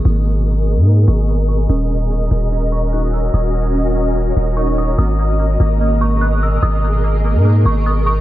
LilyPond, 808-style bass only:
\new Staff \with { instrumentName = "808-style bass" } { \clef bass \time 4/4 \key gis \minor \tempo 4 = 146 gis,,4.~ gis,,16 gis,8. gis,,4. | dis,,4. dis,,2~ dis,,8 | dis,,2~ dis,,8 dis,,4. | gis,,4. gis,,2~ gis,,8 |
gis,,4.~ gis,,16 gis,8. gis,,4. | }